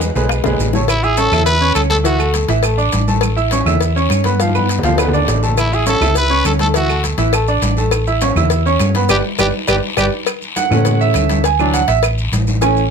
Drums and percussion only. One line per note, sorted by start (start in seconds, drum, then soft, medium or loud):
0.01 high conga medium
0.01 short guiro medium
0.01 maracas medium
0.15 low conga medium
0.15 short guiro medium
0.15 maracas soft
0.29 high bongo medium
0.29 long guiro medium
0.29 claves medium
0.29 maracas medium
0.44 high bongo loud
0.44 low conga loud
0.44 maracas soft
0.60 low conga medium
0.60 short guiro medium
0.60 maracas medium
0.73 low bongo medium
0.73 low conga medium
0.73 short guiro medium
0.73 maracas soft
0.88 cowbell loud
0.88 high conga soft
0.88 long guiro medium
0.88 claves medium
0.88 maracas medium
1.03 high conga soft
1.03 maracas soft
1.17 cowbell medium
1.17 high conga medium
1.17 short guiro medium
1.17 maracas medium
1.32 high conga soft
1.32 low conga medium
1.32 short guiro medium
1.32 claves medium
1.32 maracas soft
1.46 cowbell loud
1.46 high conga soft
1.46 long guiro medium
1.46 maracas medium
1.61 high conga soft
1.61 maracas soft
1.75 cowbell medium
1.75 high conga medium
1.75 short guiro medium
1.75 claves medium
1.75 maracas medium
1.91 cowbell medium
1.91 high conga medium
1.91 short guiro medium
1.91 maracas soft
2.05 cowbell loud
2.05 high conga soft
2.05 long guiro medium
2.05 maracas medium
2.20 high conga soft
2.20 claves medium
2.20 maracas soft
2.34 cowbell medium
2.34 high conga medium
2.34 short guiro medium
2.34 maracas medium
2.49 cowbell medium
2.49 high conga soft
2.49 short guiro medium
2.49 maracas soft
2.63 cowbell loud
2.63 high conga soft
2.63 long guiro medium
2.63 claves medium
2.63 maracas medium
2.78 high conga soft
2.78 maracas soft
2.92 cowbell medium
2.92 high conga medium
2.92 short guiro medium
2.92 maracas medium
3.08 high conga medium
3.08 short guiro medium
3.08 maracas soft
3.21 cowbell loud
3.21 high conga soft
3.21 long guiro medium
3.21 claves medium
3.21 maracas medium
3.38 high conga soft
3.38 maracas soft
3.51 cowbell medium
3.51 high conga medium
3.51 short guiro medium
3.51 maracas medium
3.66 high conga soft
3.66 low conga medium
3.66 short guiro medium
3.66 claves medium
3.66 maracas soft
3.81 cowbell loud
3.81 high conga soft
3.81 long guiro medium
3.81 maracas medium
3.96 high conga soft
3.96 maracas soft
4.10 cowbell medium
4.10 high conga medium
4.10 short guiro medium
4.10 claves medium
4.10 maracas medium
4.24 cowbell medium
4.24 high conga medium
4.24 short guiro medium
4.24 maracas soft
4.40 cowbell loud
4.40 high conga medium
4.40 long guiro medium
4.40 maracas medium
4.49 high conga medium
4.55 high conga medium
4.55 claves medium
4.55 maracas soft
4.69 cowbell medium
4.69 short guiro medium
4.69 maracas medium
4.79 low conga medium
4.83 cowbell medium
4.83 short guiro medium
4.83 maracas soft
4.88 low conga medium
4.98 cowbell loud
4.98 low conga medium
4.98 long guiro medium
4.98 claves medium
4.98 maracas medium
5.08 low conga loud
5.14 maracas soft
5.18 low conga medium
5.28 cowbell medium
5.28 low conga medium
5.28 short guiro medium
5.28 maracas medium
5.43 short guiro medium
5.43 maracas soft
5.48 low conga medium
5.57 cowbell medium
5.57 high conga soft
5.57 long guiro medium
5.57 claves medium
5.57 maracas medium
5.73 high conga soft
5.73 maracas soft
5.86 cowbell medium
5.86 high conga medium
5.86 short guiro medium
5.86 maracas medium
6.01 high conga soft
6.01 low conga medium
6.01 short guiro medium
6.01 claves medium
6.01 maracas soft
6.15 cowbell loud
6.15 high conga soft
6.15 long guiro medium
6.15 maracas medium
6.31 high conga soft
6.31 maracas soft
6.45 cowbell medium
6.45 high conga medium
6.45 short guiro medium
6.45 claves medium
6.45 maracas medium
6.59 cowbell medium
6.59 high conga medium
6.59 short guiro medium
6.59 maracas soft
6.74 cowbell loud
6.74 long guiro medium
6.74 maracas medium
6.89 high conga soft
6.89 claves medium
6.89 maracas soft
7.04 cowbell medium
7.04 high conga medium
7.04 short guiro medium
7.04 maracas medium
7.18 cowbell medium
7.18 high conga soft
7.18 short guiro medium
7.18 maracas soft
7.33 cowbell loud
7.33 high conga soft
7.33 long guiro medium
7.33 claves medium
7.33 maracas medium
7.48 high conga soft
7.48 maracas soft
7.62 cowbell medium
7.62 high conga medium
7.62 short guiro medium
7.62 maracas medium
7.77 high conga medium
7.77 short guiro medium
7.77 maracas soft
7.91 cowbell loud
7.91 high conga soft
7.91 long guiro medium
7.91 claves medium
7.91 maracas medium
8.07 high conga soft
8.07 maracas soft
8.21 cowbell medium
8.21 high conga medium
8.21 short guiro medium
8.21 maracas medium
8.36 high conga soft
8.36 low conga medium
8.36 short guiro medium
8.36 claves medium
8.36 maracas soft
8.50 cowbell loud
8.50 high conga soft
8.50 long guiro medium
8.50 maracas medium
8.66 high conga soft
8.66 maracas soft
8.79 cowbell medium
8.79 high conga medium
8.79 short guiro medium
8.79 claves medium
8.79 maracas medium
8.94 cowbell medium
8.94 high conga medium
8.94 short guiro medium
8.94 maracas soft
9.09 cowbell medium
9.09 high conga loud
9.09 long guiro loud
9.09 claves medium
9.09 maracas loud
9.38 cowbell loud
9.38 high conga loud
9.38 long guiro loud
9.38 claves medium
9.38 maracas loud
9.68 cowbell loud
9.68 high conga medium
9.68 long guiro loud
9.68 claves loud
9.68 maracas loud
9.97 cowbell loud
9.97 high conga medium
9.97 long guiro loud
9.97 claves loud
9.97 maracas medium
10.26 cowbell loud
10.26 high conga soft
10.26 long guiro medium
10.26 claves medium
10.26 maracas medium
10.42 high conga soft
10.42 maracas soft
10.56 cowbell medium
10.56 high conga medium
10.56 short guiro medium
10.56 maracas medium
10.72 high conga soft
10.72 low conga medium
10.72 short guiro medium
10.72 claves medium
10.72 maracas soft
10.85 cowbell loud
10.85 high conga soft
10.85 low conga medium
10.85 long guiro medium
10.85 maracas medium
11.01 high conga soft
11.01 maracas soft
11.14 cowbell medium
11.14 high conga medium
11.14 short guiro medium
11.14 claves medium
11.14 maracas medium
11.29 cowbell medium
11.29 high conga medium
11.29 short guiro medium
11.29 maracas soft
11.44 cowbell loud
11.44 high conga soft
11.44 long guiro medium
11.44 maracas medium
11.60 high conga soft
11.60 claves medium
11.60 maracas soft
11.74 cowbell medium
11.74 high conga medium
11.74 short guiro medium
11.74 maracas medium
11.88 cowbell medium
11.88 high conga soft
11.88 short guiro medium
11.88 maracas soft
12.03 cowbell loud
12.03 high conga soft
12.03 long guiro medium
12.03 claves medium
12.03 maracas medium
12.18 high conga soft
12.18 maracas soft
12.33 cowbell medium
12.33 high conga medium
12.33 short guiro medium
12.33 maracas medium
12.47 high conga medium
12.47 short guiro medium
12.47 maracas soft
12.62 cowbell loud
12.62 long guiro medium
12.62 claves medium
12.62 maracas medium
12.77 maracas soft